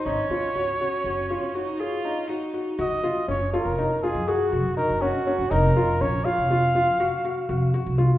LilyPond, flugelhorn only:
\new Staff \with { instrumentName = "Flugelhorn" } { \time 11/8 \key ges \lydian \tempo 4 = 121 des''1~ des''8 r4 | ees''4 des''8 bes'4 aes'8 ges'4 bes'8 ges'4 | bes'4 des''8 f''2. r4 | }